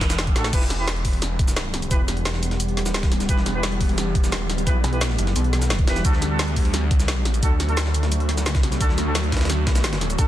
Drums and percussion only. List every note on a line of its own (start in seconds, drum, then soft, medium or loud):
0.01 kick medium
0.01 snare soft
0.01 snare loud
0.01 closed hi-hat medium
0.10 snare loud
0.10 closed hi-hat medium
0.10 shaker medium
0.19 snare loud
0.19 closed hi-hat loud
0.19 closed hi-hat medium
0.19 shaker medium
0.27 kick loud
0.27 closed hi-hat soft
0.36 snare medium
0.36 closed hi-hat medium
0.36 shaker soft
0.44 snare medium
0.44 snare soft
0.44 closed hi-hat soft
0.44 shaker soft
0.53 kick loud
0.53 closed hi-hat loud
0.53 crash medium
0.53 shaker soft
0.62 snare soft
0.70 snare soft
0.70 closed hi-hat medium
0.70 shaker soft
0.88 snare loud
0.88 closed hi-hat medium
0.88 closed hi-hat loud
0.88 shaker medium
0.96 closed hi-hat soft
1.05 kick medium
1.05 closed hi-hat medium
1.05 open hi-hat medium
1.13 closed hi-hat soft
1.22 snare medium
1.22 closed hi-hat medium
1.22 closed hi-hat loud
1.22 shaker soft
1.39 kick loud
1.39 closed hi-hat medium
1.48 snare medium
1.48 shaker medium
1.56 snare loud
1.56 closed hi-hat medium
1.56 closed hi-hat loud
1.56 shaker medium
1.74 snare soft
1.74 closed hi-hat medium
1.82 closed hi-hat soft
1.82 shaker soft
1.91 kick loud
1.91 closed hi-hat medium
1.91 closed hi-hat loud
1.91 shaker soft
2.08 snare soft
2.08 closed hi-hat medium
2.08 shaker soft
2.17 closed hi-hat soft
2.25 snare loud
2.25 closed hi-hat medium
2.25 closed hi-hat loud
2.25 shaker soft
2.34 snare medium
2.43 closed hi-hat medium
2.43 shaker soft
2.51 snare soft
2.51 closed hi-hat soft
2.60 closed hi-hat medium
2.60 closed hi-hat loud
2.60 shaker medium
2.69 closed hi-hat soft
2.77 snare soft
2.77 closed hi-hat medium
2.86 snare medium
2.86 shaker medium
2.94 snare loud
2.94 closed hi-hat medium
2.94 closed hi-hat loud
2.94 shaker soft
3.03 kick loud
3.03 snare loud
3.03 closed hi-hat medium
3.12 snare soft
3.12 closed hi-hat medium
3.20 snare soft
3.20 closed hi-hat soft
3.20 shaker soft
3.29 kick loud
3.29 closed hi-hat medium
3.29 closed hi-hat loud
3.29 shaker soft
3.37 snare soft
3.46 snare soft
3.46 closed hi-hat medium
3.46 shaker soft
3.63 snare loud
3.63 closed hi-hat medium
3.63 shaker soft
3.72 closed hi-hat soft
3.81 kick medium
3.81 closed hi-hat medium
3.81 open hi-hat medium
3.89 closed hi-hat soft
3.98 snare medium
3.98 closed hi-hat medium
3.98 shaker soft
4.15 kick loud
4.15 closed hi-hat medium
4.24 snare medium
4.24 shaker medium
4.32 snare loud
4.32 closed hi-hat medium
4.32 closed hi-hat loud
4.32 shaker soft
4.50 snare soft
4.50 closed hi-hat medium
4.58 closed hi-hat soft
4.58 shaker soft
4.67 kick loud
4.67 closed hi-hat loud
4.67 closed hi-hat medium
4.67 shaker soft
4.84 snare soft
4.84 closed hi-hat medium
4.84 shaker soft
4.93 closed hi-hat soft
5.01 snare loud
5.01 closed hi-hat medium
5.01 shaker medium
5.10 snare medium
5.18 closed hi-hat medium
5.18 shaker soft
5.27 snare medium
5.27 closed hi-hat soft
5.36 closed hi-hat medium
5.36 shaker medium
5.44 closed hi-hat soft
5.53 snare soft
5.53 closed hi-hat medium
5.62 snare medium
5.62 shaker medium
5.70 snare loud
5.70 closed hi-hat medium
5.70 shaker medium
5.79 kick loud
5.79 closed hi-hat soft
5.87 snare loud
5.87 snare soft
5.87 closed hi-hat medium
5.96 snare soft
5.96 closed hi-hat soft
5.96 shaker soft
6.05 kick loud
6.05 closed hi-hat medium
6.05 shaker medium
6.13 snare soft
6.22 snare soft
6.22 closed hi-hat medium
6.22 shaker soft
6.39 snare loud
6.39 closed hi-hat medium
6.39 shaker medium
6.48 closed hi-hat soft
6.56 kick medium
6.56 closed hi-hat medium
6.56 open hi-hat medium
6.65 closed hi-hat soft
6.74 snare medium
6.74 closed hi-hat medium
6.74 shaker medium
6.91 kick loud
6.91 closed hi-hat medium
7.00 snare medium
7.00 shaker medium
7.08 snare loud
7.08 closed hi-hat medium
7.08 shaker medium
7.25 snare soft
7.25 closed hi-hat medium
7.34 closed hi-hat soft
7.34 shaker soft
7.43 kick loud
7.43 closed hi-hat medium
7.43 shaker medium
7.60 snare soft
7.60 closed hi-hat medium
7.60 shaker soft
7.69 closed hi-hat soft
7.77 snare loud
7.77 closed hi-hat loud
7.77 closed hi-hat medium
7.77 shaker medium
7.86 snare medium
7.94 closed hi-hat medium
7.94 shaker soft
8.03 snare soft
8.03 closed hi-hat soft
8.12 closed hi-hat medium
8.12 closed hi-hat loud
8.12 shaker medium
8.20 closed hi-hat soft
8.29 snare soft
8.29 closed hi-hat medium
8.37 snare medium
8.37 shaker medium
8.46 snare loud
8.46 closed hi-hat loud
8.46 closed hi-hat medium
8.46 shaker medium
8.55 kick loud
8.55 snare loud
8.55 closed hi-hat medium
8.63 snare soft
8.63 closed hi-hat medium
8.72 snare soft
8.72 closed hi-hat soft
8.72 shaker soft
8.81 kick loud
8.81 closed hi-hat loud
8.81 closed hi-hat medium
8.81 shaker medium
8.89 snare soft
8.98 snare soft
8.98 closed hi-hat medium
8.98 shaker soft
9.15 snare loud
9.15 closed hi-hat loud
9.15 closed hi-hat medium
9.15 shaker medium
9.24 closed hi-hat soft
9.32 kick medium
9.32 snare medium
9.32 closed hi-hat medium
9.37 snare medium
9.37 closed hi-hat medium
9.41 snare medium
9.41 closed hi-hat soft
9.41 closed hi-hat medium
9.45 snare medium
9.45 closed hi-hat medium
9.50 snare medium
9.50 closed hi-hat loud
9.50 closed hi-hat medium
9.50 shaker medium
9.67 kick loud
9.67 snare loud
9.67 closed hi-hat medium
9.75 snare loud
9.75 closed hi-hat medium
9.75 shaker medium
9.84 snare loud
9.84 closed hi-hat loud
9.84 closed hi-hat medium
9.84 shaker medium
9.93 snare loud
9.93 closed hi-hat medium
10.01 snare soft
10.01 closed hi-hat medium
10.10 closed hi-hat soft
10.10 shaker soft
10.19 kick loud
10.19 closed hi-hat medium
10.19 closed hi-hat loud
10.19 shaker medium